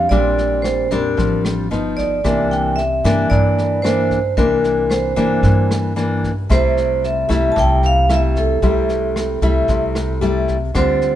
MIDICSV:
0, 0, Header, 1, 5, 480
1, 0, Start_track
1, 0, Tempo, 532387
1, 93, Time_signature, 4, 2, 24, 8
1, 10056, End_track
2, 0, Start_track
2, 0, Title_t, "Vibraphone"
2, 0, Program_c, 0, 11
2, 84, Note_on_c, 0, 74, 83
2, 535, Note_off_c, 0, 74, 0
2, 561, Note_on_c, 0, 72, 70
2, 790, Note_off_c, 0, 72, 0
2, 821, Note_on_c, 0, 70, 62
2, 1264, Note_off_c, 0, 70, 0
2, 1773, Note_on_c, 0, 74, 76
2, 2220, Note_off_c, 0, 74, 0
2, 2266, Note_on_c, 0, 79, 80
2, 2486, Note_on_c, 0, 76, 76
2, 2508, Note_off_c, 0, 79, 0
2, 2937, Note_off_c, 0, 76, 0
2, 2974, Note_on_c, 0, 74, 84
2, 3447, Note_on_c, 0, 72, 74
2, 3469, Note_off_c, 0, 74, 0
2, 3897, Note_off_c, 0, 72, 0
2, 3941, Note_on_c, 0, 70, 77
2, 4416, Note_on_c, 0, 72, 62
2, 4433, Note_off_c, 0, 70, 0
2, 5100, Note_off_c, 0, 72, 0
2, 5876, Note_on_c, 0, 72, 83
2, 6313, Note_off_c, 0, 72, 0
2, 6355, Note_on_c, 0, 76, 74
2, 6737, Note_off_c, 0, 76, 0
2, 6778, Note_on_c, 0, 81, 71
2, 6827, Note_off_c, 0, 81, 0
2, 6847, Note_on_c, 0, 79, 93
2, 7078, Note_off_c, 0, 79, 0
2, 7087, Note_on_c, 0, 77, 90
2, 7296, Note_off_c, 0, 77, 0
2, 7338, Note_on_c, 0, 76, 87
2, 7558, Note_on_c, 0, 69, 72
2, 7564, Note_off_c, 0, 76, 0
2, 9429, Note_off_c, 0, 69, 0
2, 9700, Note_on_c, 0, 72, 82
2, 10056, Note_off_c, 0, 72, 0
2, 10056, End_track
3, 0, Start_track
3, 0, Title_t, "Nylon-string guitar"
3, 0, Program_c, 1, 24
3, 98, Note_on_c, 1, 55, 52
3, 103, Note_on_c, 1, 46, 52
3, 107, Note_on_c, 1, 60, 54
3, 108, Note_on_c, 1, 62, 59
3, 778, Note_off_c, 1, 55, 0
3, 782, Note_off_c, 1, 62, 0
3, 783, Note_off_c, 1, 60, 0
3, 824, Note_on_c, 1, 55, 58
3, 829, Note_on_c, 1, 60, 51
3, 829, Note_on_c, 1, 62, 64
3, 1035, Note_off_c, 1, 46, 0
3, 1056, Note_on_c, 1, 53, 51
3, 1501, Note_off_c, 1, 55, 0
3, 1503, Note_off_c, 1, 62, 0
3, 1504, Note_off_c, 1, 60, 0
3, 1511, Note_off_c, 1, 53, 0
3, 1539, Note_on_c, 1, 53, 47
3, 1543, Note_on_c, 1, 59, 48
3, 1547, Note_on_c, 1, 63, 52
3, 1979, Note_off_c, 1, 53, 0
3, 1980, Note_off_c, 1, 59, 0
3, 1982, Note_off_c, 1, 63, 0
3, 2022, Note_on_c, 1, 48, 50
3, 2027, Note_on_c, 1, 52, 49
3, 2027, Note_on_c, 1, 58, 46
3, 2033, Note_on_c, 1, 62, 53
3, 2497, Note_off_c, 1, 52, 0
3, 2499, Note_off_c, 1, 58, 0
3, 2500, Note_off_c, 1, 62, 0
3, 2745, Note_on_c, 1, 52, 60
3, 2750, Note_on_c, 1, 58, 62
3, 2751, Note_on_c, 1, 62, 62
3, 2956, Note_off_c, 1, 48, 0
3, 2986, Note_on_c, 1, 43, 51
3, 3422, Note_off_c, 1, 52, 0
3, 3424, Note_off_c, 1, 58, 0
3, 3425, Note_off_c, 1, 62, 0
3, 3461, Note_on_c, 1, 52, 46
3, 3465, Note_on_c, 1, 58, 44
3, 3466, Note_on_c, 1, 62, 51
3, 3768, Note_off_c, 1, 52, 0
3, 3768, Note_off_c, 1, 58, 0
3, 3770, Note_off_c, 1, 62, 0
3, 3917, Note_off_c, 1, 43, 0
3, 3939, Note_on_c, 1, 48, 50
3, 3944, Note_on_c, 1, 52, 48
3, 3946, Note_on_c, 1, 62, 53
3, 3947, Note_on_c, 1, 58, 51
3, 4621, Note_off_c, 1, 52, 0
3, 4622, Note_off_c, 1, 58, 0
3, 4623, Note_off_c, 1, 62, 0
3, 4654, Note_on_c, 1, 52, 56
3, 4658, Note_on_c, 1, 58, 56
3, 4663, Note_on_c, 1, 62, 62
3, 4874, Note_off_c, 1, 48, 0
3, 4900, Note_on_c, 1, 43, 49
3, 5337, Note_off_c, 1, 52, 0
3, 5339, Note_off_c, 1, 58, 0
3, 5341, Note_off_c, 1, 62, 0
3, 5375, Note_on_c, 1, 52, 47
3, 5380, Note_on_c, 1, 58, 45
3, 5381, Note_on_c, 1, 62, 52
3, 5685, Note_off_c, 1, 52, 0
3, 5686, Note_off_c, 1, 58, 0
3, 5688, Note_off_c, 1, 62, 0
3, 5834, Note_off_c, 1, 43, 0
3, 5856, Note_on_c, 1, 48, 52
3, 5860, Note_on_c, 1, 55, 52
3, 5862, Note_on_c, 1, 57, 56
3, 5863, Note_on_c, 1, 64, 54
3, 6539, Note_off_c, 1, 55, 0
3, 6539, Note_off_c, 1, 57, 0
3, 6541, Note_off_c, 1, 64, 0
3, 6570, Note_on_c, 1, 55, 55
3, 6574, Note_on_c, 1, 57, 56
3, 6582, Note_on_c, 1, 64, 69
3, 6793, Note_off_c, 1, 48, 0
3, 6816, Note_on_c, 1, 48, 52
3, 7254, Note_off_c, 1, 55, 0
3, 7257, Note_off_c, 1, 57, 0
3, 7260, Note_off_c, 1, 64, 0
3, 7302, Note_on_c, 1, 55, 43
3, 7304, Note_on_c, 1, 57, 47
3, 7307, Note_on_c, 1, 64, 56
3, 7741, Note_off_c, 1, 55, 0
3, 7741, Note_off_c, 1, 57, 0
3, 7743, Note_off_c, 1, 64, 0
3, 7752, Note_off_c, 1, 48, 0
3, 7775, Note_on_c, 1, 48, 50
3, 7780, Note_on_c, 1, 55, 53
3, 7781, Note_on_c, 1, 57, 47
3, 7785, Note_on_c, 1, 64, 54
3, 8458, Note_off_c, 1, 55, 0
3, 8460, Note_off_c, 1, 57, 0
3, 8461, Note_off_c, 1, 64, 0
3, 8494, Note_on_c, 1, 55, 54
3, 8498, Note_on_c, 1, 57, 54
3, 8502, Note_on_c, 1, 64, 66
3, 8712, Note_off_c, 1, 48, 0
3, 8737, Note_on_c, 1, 48, 53
3, 9176, Note_off_c, 1, 55, 0
3, 9178, Note_off_c, 1, 57, 0
3, 9179, Note_off_c, 1, 64, 0
3, 9207, Note_on_c, 1, 55, 46
3, 9215, Note_on_c, 1, 57, 46
3, 9217, Note_on_c, 1, 64, 48
3, 9521, Note_off_c, 1, 55, 0
3, 9522, Note_off_c, 1, 57, 0
3, 9525, Note_off_c, 1, 64, 0
3, 9671, Note_off_c, 1, 48, 0
3, 9688, Note_on_c, 1, 50, 51
3, 9693, Note_on_c, 1, 55, 49
3, 9696, Note_on_c, 1, 60, 48
3, 9700, Note_on_c, 1, 65, 55
3, 10056, Note_off_c, 1, 50, 0
3, 10056, Note_off_c, 1, 55, 0
3, 10056, Note_off_c, 1, 60, 0
3, 10056, Note_off_c, 1, 65, 0
3, 10056, End_track
4, 0, Start_track
4, 0, Title_t, "Upright bass"
4, 0, Program_c, 2, 32
4, 97, Note_on_c, 2, 34, 75
4, 779, Note_off_c, 2, 34, 0
4, 818, Note_on_c, 2, 41, 72
4, 1039, Note_off_c, 2, 41, 0
4, 1061, Note_on_c, 2, 33, 91
4, 1504, Note_off_c, 2, 33, 0
4, 1544, Note_on_c, 2, 31, 85
4, 1986, Note_off_c, 2, 31, 0
4, 2021, Note_on_c, 2, 36, 75
4, 2702, Note_off_c, 2, 36, 0
4, 2744, Note_on_c, 2, 43, 73
4, 2963, Note_off_c, 2, 43, 0
4, 2983, Note_on_c, 2, 43, 95
4, 3903, Note_off_c, 2, 43, 0
4, 3940, Note_on_c, 2, 36, 74
4, 4622, Note_off_c, 2, 36, 0
4, 4656, Note_on_c, 2, 43, 74
4, 4879, Note_off_c, 2, 43, 0
4, 4896, Note_on_c, 2, 43, 98
4, 5820, Note_off_c, 2, 43, 0
4, 5860, Note_on_c, 2, 36, 80
4, 6542, Note_off_c, 2, 36, 0
4, 6578, Note_on_c, 2, 36, 73
4, 6800, Note_off_c, 2, 36, 0
4, 6818, Note_on_c, 2, 36, 91
4, 7741, Note_off_c, 2, 36, 0
4, 7774, Note_on_c, 2, 36, 78
4, 8458, Note_off_c, 2, 36, 0
4, 8491, Note_on_c, 2, 36, 72
4, 8716, Note_off_c, 2, 36, 0
4, 8727, Note_on_c, 2, 36, 88
4, 9654, Note_off_c, 2, 36, 0
4, 9686, Note_on_c, 2, 38, 76
4, 10056, Note_off_c, 2, 38, 0
4, 10056, End_track
5, 0, Start_track
5, 0, Title_t, "Drums"
5, 99, Note_on_c, 9, 36, 54
5, 99, Note_on_c, 9, 38, 22
5, 189, Note_off_c, 9, 36, 0
5, 190, Note_off_c, 9, 38, 0
5, 345, Note_on_c, 9, 38, 22
5, 435, Note_off_c, 9, 38, 0
5, 581, Note_on_c, 9, 37, 54
5, 581, Note_on_c, 9, 38, 22
5, 671, Note_off_c, 9, 37, 0
5, 671, Note_off_c, 9, 38, 0
5, 823, Note_on_c, 9, 36, 22
5, 826, Note_on_c, 9, 38, 22
5, 913, Note_off_c, 9, 36, 0
5, 917, Note_off_c, 9, 38, 0
5, 1065, Note_on_c, 9, 36, 56
5, 1069, Note_on_c, 9, 38, 25
5, 1155, Note_off_c, 9, 36, 0
5, 1159, Note_off_c, 9, 38, 0
5, 1306, Note_on_c, 9, 37, 54
5, 1306, Note_on_c, 9, 38, 21
5, 1396, Note_off_c, 9, 37, 0
5, 1396, Note_off_c, 9, 38, 0
5, 1554, Note_on_c, 9, 38, 22
5, 1644, Note_off_c, 9, 38, 0
5, 1785, Note_on_c, 9, 36, 20
5, 1790, Note_on_c, 9, 38, 20
5, 1875, Note_off_c, 9, 36, 0
5, 1880, Note_off_c, 9, 38, 0
5, 2025, Note_on_c, 9, 36, 50
5, 2027, Note_on_c, 9, 37, 50
5, 2027, Note_on_c, 9, 38, 22
5, 2115, Note_off_c, 9, 36, 0
5, 2117, Note_off_c, 9, 37, 0
5, 2117, Note_off_c, 9, 38, 0
5, 2271, Note_on_c, 9, 38, 22
5, 2361, Note_off_c, 9, 38, 0
5, 2508, Note_on_c, 9, 38, 21
5, 2598, Note_off_c, 9, 38, 0
5, 2745, Note_on_c, 9, 36, 22
5, 2752, Note_on_c, 9, 37, 55
5, 2752, Note_on_c, 9, 38, 21
5, 2835, Note_off_c, 9, 36, 0
5, 2842, Note_off_c, 9, 37, 0
5, 2842, Note_off_c, 9, 38, 0
5, 2987, Note_on_c, 9, 36, 57
5, 2995, Note_on_c, 9, 38, 24
5, 3077, Note_off_c, 9, 36, 0
5, 3085, Note_off_c, 9, 38, 0
5, 3231, Note_on_c, 9, 38, 21
5, 3321, Note_off_c, 9, 38, 0
5, 3471, Note_on_c, 9, 37, 57
5, 3471, Note_on_c, 9, 38, 23
5, 3561, Note_off_c, 9, 37, 0
5, 3561, Note_off_c, 9, 38, 0
5, 3702, Note_on_c, 9, 36, 21
5, 3704, Note_on_c, 9, 38, 19
5, 3792, Note_off_c, 9, 36, 0
5, 3794, Note_off_c, 9, 38, 0
5, 3942, Note_on_c, 9, 36, 56
5, 3943, Note_on_c, 9, 38, 22
5, 4032, Note_off_c, 9, 36, 0
5, 4033, Note_off_c, 9, 38, 0
5, 4185, Note_on_c, 9, 38, 22
5, 4275, Note_off_c, 9, 38, 0
5, 4423, Note_on_c, 9, 37, 55
5, 4423, Note_on_c, 9, 38, 23
5, 4513, Note_off_c, 9, 37, 0
5, 4513, Note_off_c, 9, 38, 0
5, 4662, Note_on_c, 9, 36, 22
5, 4664, Note_on_c, 9, 38, 21
5, 4752, Note_off_c, 9, 36, 0
5, 4754, Note_off_c, 9, 38, 0
5, 4900, Note_on_c, 9, 38, 23
5, 4901, Note_on_c, 9, 36, 59
5, 4990, Note_off_c, 9, 38, 0
5, 4991, Note_off_c, 9, 36, 0
5, 5147, Note_on_c, 9, 37, 55
5, 5147, Note_on_c, 9, 38, 22
5, 5237, Note_off_c, 9, 37, 0
5, 5237, Note_off_c, 9, 38, 0
5, 5384, Note_on_c, 9, 38, 22
5, 5474, Note_off_c, 9, 38, 0
5, 5622, Note_on_c, 9, 36, 22
5, 5629, Note_on_c, 9, 38, 20
5, 5712, Note_off_c, 9, 36, 0
5, 5719, Note_off_c, 9, 38, 0
5, 5862, Note_on_c, 9, 36, 52
5, 5866, Note_on_c, 9, 37, 54
5, 5866, Note_on_c, 9, 38, 22
5, 5953, Note_off_c, 9, 36, 0
5, 5956, Note_off_c, 9, 37, 0
5, 5956, Note_off_c, 9, 38, 0
5, 6107, Note_on_c, 9, 38, 23
5, 6197, Note_off_c, 9, 38, 0
5, 6348, Note_on_c, 9, 38, 21
5, 6438, Note_off_c, 9, 38, 0
5, 6582, Note_on_c, 9, 36, 21
5, 6584, Note_on_c, 9, 37, 53
5, 6584, Note_on_c, 9, 38, 21
5, 6672, Note_off_c, 9, 36, 0
5, 6674, Note_off_c, 9, 37, 0
5, 6674, Note_off_c, 9, 38, 0
5, 6821, Note_on_c, 9, 36, 59
5, 6825, Note_on_c, 9, 38, 24
5, 6911, Note_off_c, 9, 36, 0
5, 6915, Note_off_c, 9, 38, 0
5, 7060, Note_on_c, 9, 38, 21
5, 7150, Note_off_c, 9, 38, 0
5, 7298, Note_on_c, 9, 37, 58
5, 7298, Note_on_c, 9, 38, 23
5, 7388, Note_off_c, 9, 37, 0
5, 7388, Note_off_c, 9, 38, 0
5, 7536, Note_on_c, 9, 38, 21
5, 7537, Note_on_c, 9, 36, 21
5, 7626, Note_off_c, 9, 38, 0
5, 7627, Note_off_c, 9, 36, 0
5, 7773, Note_on_c, 9, 38, 22
5, 7776, Note_on_c, 9, 36, 53
5, 7863, Note_off_c, 9, 38, 0
5, 7866, Note_off_c, 9, 36, 0
5, 8015, Note_on_c, 9, 38, 22
5, 8105, Note_off_c, 9, 38, 0
5, 8259, Note_on_c, 9, 37, 57
5, 8259, Note_on_c, 9, 38, 22
5, 8349, Note_off_c, 9, 37, 0
5, 8349, Note_off_c, 9, 38, 0
5, 8494, Note_on_c, 9, 36, 22
5, 8497, Note_on_c, 9, 38, 21
5, 8584, Note_off_c, 9, 36, 0
5, 8588, Note_off_c, 9, 38, 0
5, 8730, Note_on_c, 9, 38, 23
5, 8733, Note_on_c, 9, 36, 57
5, 8820, Note_off_c, 9, 38, 0
5, 8824, Note_off_c, 9, 36, 0
5, 8973, Note_on_c, 9, 37, 53
5, 8973, Note_on_c, 9, 38, 22
5, 9063, Note_off_c, 9, 37, 0
5, 9063, Note_off_c, 9, 38, 0
5, 9215, Note_on_c, 9, 38, 23
5, 9305, Note_off_c, 9, 38, 0
5, 9450, Note_on_c, 9, 38, 19
5, 9452, Note_on_c, 9, 36, 20
5, 9540, Note_off_c, 9, 38, 0
5, 9542, Note_off_c, 9, 36, 0
5, 9689, Note_on_c, 9, 37, 53
5, 9689, Note_on_c, 9, 38, 21
5, 9692, Note_on_c, 9, 36, 54
5, 9779, Note_off_c, 9, 37, 0
5, 9779, Note_off_c, 9, 38, 0
5, 9782, Note_off_c, 9, 36, 0
5, 9932, Note_on_c, 9, 38, 23
5, 10022, Note_off_c, 9, 38, 0
5, 10056, End_track
0, 0, End_of_file